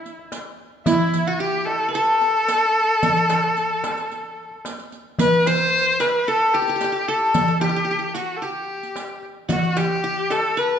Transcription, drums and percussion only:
0.06 riq
0.19 darbuka ka
0.32 riq, darbuka tek
0.86 riq, darbuka dum
1.14 riq
1.67 darbuka tek
1.94 riq, darbuka ka
2.21 riq
2.35 darbuka ka
2.48 riq, darbuka tek
3.03 riq, darbuka dum
3.16 riq
3.30 riq, darbuka tek
3.57 riq
3.84 riq, darbuka tek
3.97 riq, darbuka ka
4.11 riq, darbuka ka
4.51 darbuka ka
4.65 riq, darbuka tek
4.78 riq, darbuka ka
4.92 riq, darbuka ka
5.06 darbuka ka
5.19 riq, darbuka dum
5.32 riq, darbuka ka
5.46 riq, darbuka tek
5.73 darbuka ka
6.00 riq, darbuka tek
6.28 riq
6.67 riq, darbuka ka
6.81 riq, darbuka tek
6.95 darbuka ka
7.08 darbuka ka
7.22 darbuka ka
7.34 riq, darbuka dum
7.48 riq, darbuka ka
7.61 riq, darbuka tek
7.88 darbuka ka
8.15 riq
8.42 riq
8.83 riq
8.96 riq, darbuka tek
9.10 darbuka ka
9.23 darbuka ka
9.37 darbuka ka
9.49 riq, darbuka dum
9.63 riq, darbuka ka
9.77 riq, darbuka tek
10.04 darbuka ka
10.31 riq, darbuka tek
10.58 riq

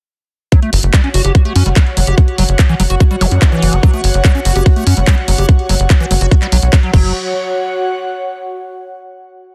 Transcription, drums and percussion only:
0.52 kick, closed hi-hat
0.62 closed hi-hat
0.73 open hi-hat
0.83 closed hi-hat
0.94 kick, clap, closed hi-hat
1.04 closed hi-hat
1.14 open hi-hat
1.25 closed hi-hat
1.35 kick, closed hi-hat
1.45 closed hi-hat
1.56 open hi-hat
1.66 closed hi-hat
1.76 kick, clap, closed hi-hat
1.87 closed hi-hat
1.97 open hi-hat
2.07 closed hi-hat
2.18 kick, closed hi-hat
2.28 closed hi-hat
2.38 open hi-hat
2.49 closed hi-hat
2.59 kick, clap, closed hi-hat
2.69 closed hi-hat
2.80 open hi-hat
2.90 closed hi-hat
3.00 kick, closed hi-hat
3.11 closed hi-hat
3.21 open hi-hat
3.31 closed hi-hat
3.42 kick, clap, closed hi-hat
3.52 closed hi-hat
3.62 open hi-hat
3.73 closed hi-hat
3.83 kick, closed hi-hat
3.94 closed hi-hat
4.04 open hi-hat
4.14 closed hi-hat
4.25 kick, clap, closed hi-hat
4.35 closed hi-hat
4.45 open hi-hat
4.56 closed hi-hat
4.66 kick, closed hi-hat
4.76 closed hi-hat
4.87 open hi-hat
4.97 closed hi-hat
5.07 kick, clap, closed hi-hat
5.18 closed hi-hat
5.28 open hi-hat
5.38 closed hi-hat
5.49 kick, closed hi-hat
5.59 closed hi-hat
5.69 open hi-hat
5.80 closed hi-hat
5.90 kick, clap, closed hi-hat
6.00 closed hi-hat
6.11 open hi-hat
6.21 closed hi-hat
6.31 kick, closed hi-hat
6.42 clap, closed hi-hat
6.52 open hi-hat
6.62 closed hi-hat
6.73 kick, clap, closed hi-hat
6.83 closed hi-hat
6.94 kick, crash

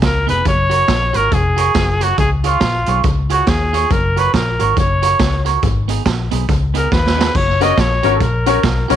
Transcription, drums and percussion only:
0.02 kick, snare, closed hi-hat
0.29 closed hi-hat
0.45 kick, closed hi-hat
0.71 closed hi-hat
0.88 kick, snare, closed hi-hat
1.14 closed hi-hat
1.32 kick, closed hi-hat
1.58 closed hi-hat
1.74 kick, snare, closed hi-hat
2.01 closed hi-hat
2.18 kick, closed hi-hat
2.44 closed hi-hat
2.61 kick, snare, closed hi-hat
2.86 closed hi-hat
3.03 kick, closed hi-hat
3.30 closed hi-hat
3.47 kick, snare, closed hi-hat
3.74 closed hi-hat
3.90 kick, closed hi-hat
4.17 closed hi-hat
4.34 kick, snare, closed hi-hat
4.60 closed hi-hat
4.77 kick, closed hi-hat
5.03 closed hi-hat
5.19 kick, snare, closed hi-hat
5.46 closed hi-hat
5.63 kick, closed hi-hat
5.89 closed hi-hat
6.06 kick, snare, closed hi-hat
6.31 closed hi-hat
6.49 kick, closed hi-hat
6.75 closed hi-hat
6.92 kick, snare
7.07 snare
7.21 snare
7.35 kick, splash
7.61 closed hi-hat
7.77 kick, snare, closed hi-hat
8.03 closed hi-hat
8.20 kick, closed hi-hat
8.46 closed hi-hat
8.63 kick, snare, closed hi-hat
8.90 closed hi-hat

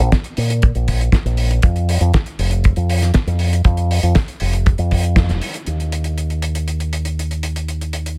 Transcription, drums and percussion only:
0.12 kick, snare, closed hi-hat
0.24 closed hi-hat
0.37 open hi-hat
0.50 closed hi-hat
0.62 kick, closed hi-hat
0.75 closed hi-hat
0.88 kick, open hi-hat
1.01 closed hi-hat
1.12 kick, snare, closed hi-hat
1.26 closed hi-hat
1.37 open hi-hat
1.51 closed hi-hat
1.62 kick, closed hi-hat
1.76 closed hi-hat
1.89 open hi-hat
2.01 closed hi-hat
2.14 kick, snare, closed hi-hat
2.26 closed hi-hat
2.39 open hi-hat
2.51 closed hi-hat
2.64 kick, closed hi-hat
2.76 closed hi-hat
2.90 open hi-hat
3.02 snare, closed hi-hat
3.14 kick, snare, closed hi-hat
3.28 closed hi-hat
3.39 open hi-hat
3.53 closed hi-hat
3.64 kick, closed hi-hat
3.77 closed hi-hat
3.91 open hi-hat
4.03 closed hi-hat
4.15 kick, snare, closed hi-hat
4.28 closed hi-hat
4.40 open hi-hat
4.53 closed hi-hat
4.66 kick, closed hi-hat
4.78 closed hi-hat
4.91 kick, open hi-hat
5.03 closed hi-hat
5.16 kick, snare, closed hi-hat
5.29 snare, closed hi-hat
5.41 open hi-hat
5.54 closed hi-hat
5.67 closed hi-hat
5.80 closed hi-hat
5.92 closed hi-hat
6.04 closed hi-hat
6.18 closed hi-hat
6.30 closed hi-hat
6.42 closed hi-hat
6.55 closed hi-hat
6.68 closed hi-hat
6.80 closed hi-hat
6.93 closed hi-hat
7.05 closed hi-hat
7.19 closed hi-hat
7.31 closed hi-hat
7.43 closed hi-hat
7.56 closed hi-hat
7.68 closed hi-hat
7.81 closed hi-hat
7.93 closed hi-hat
8.06 closed hi-hat

